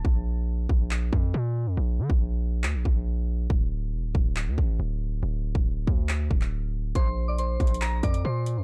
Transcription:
<<
  \new Staff \with { instrumentName = "Synth bell" } { \time 4/4 \key bes \lydian \tempo 4 = 139 r1 | r1 | r1 | r1 |
<c'' c'''>8. <d'' d'''>16 <c'' c'''>4 <bes'' bes'''>8 <d'' d'''>8 <c'' c'''>8 r8 | }
  \new Staff \with { instrumentName = "808-style bass" } { \clef bass \time 4/4 \key bes \lydian bes,,4. bes,,4 f,8 bes,8. f,16 | bes,,8 d16 bes,,4~ bes,,16 d,16 bes,,16 bes,,4. | d,,4 e,,16 d,,16 d,,8. d,16 a,,8 d,,4 | d,,8. d,,8. d,4 d,,4. |
bes,,4. bes,,4 f,8 bes,8. f,16 | }
  \new DrumStaff \with { instrumentName = "Drums" } \drummode { \time 4/4 bd4 r8 bd8 hc8 bd8 r4 | r8. bd16 r4 hc8 bd8 r4 | bd4 r8 bd8 hc8 bd8 r4 | r8. bd16 r8 bd8 hc8 bd16 hc16 r4 |
<hh bd>4 \tuplet 3/2 { hh16 r16 r16 <hh bd>16 hh16 hh16 } hc8 <hh bd>16 hh16 r8 hh8 | }
>>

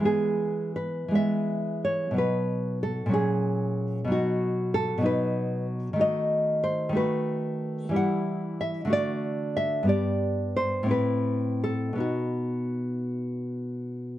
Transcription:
\new Staff \with { instrumentName = "Nylon-string guitar" } { \time 6/8 \key b \mixolydian \tempo 4. = 61 << { gis'4 b'8 e''4 cis''8 | b'4 a'8 gis'4. | fis'4 a'8 b'4 r8 | \key b \phrygian dis''4 c''8 b'4. |
fis''4 e''8 d''4 e''8 | d''4 c''8 b'4 a'8 | fis'4. r4. | } \\ { <e gis b>4. <e gis b>4. | <b, fis dis'>4. <ais, fis cis'>4. | <b, fis dis'>4. <b, fis dis'>4. | <dis a fis'>4. <dis a fis'>4. |
<e g e'>4. <d a fis'>4. | <g, b g'>4. <a, c' e'>4. | <b, b dis'>2. | } >> }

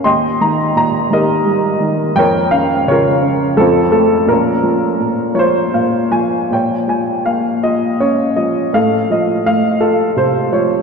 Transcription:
<<
  \new Staff \with { instrumentName = "Upright piano" } { \time 3/4 \key bes \dorian \tempo 4 = 84 << { c'''8 bes''8 bes''8 ees''4 r8 | g''8 f''8 des''4 a'8 a'8 | bes'4. c''4. | g''8 aes''8 f''8 ees''8 des''8 ees''8 |
f''8 ees''8 f''8 a'8 c''8 des''8 | } \\ { <ees'' g''>4. <g' bes'>4. | <bes' des''>4 <f' bes'>4 <c' f'>4 | <des' f'>4. f'4. | des''4. r4. |
a'4. r4. | } >> }
  \new Staff \with { instrumentName = "Upright piano" } { \clef bass \time 3/4 \key bes \dorian ees,8 ees8 bes,8 ees8 g8 ees8 | f,8 des'8 des8 des'8 f,8 a8 | bes,8 f8 bes,8 <f des''>8 <bes, f''>8 <f aes''>8 | bes,8 f8 bes8 f'8 des'8 f8 |
a,8 f8 a8 f'8 c8 f8 | }
>>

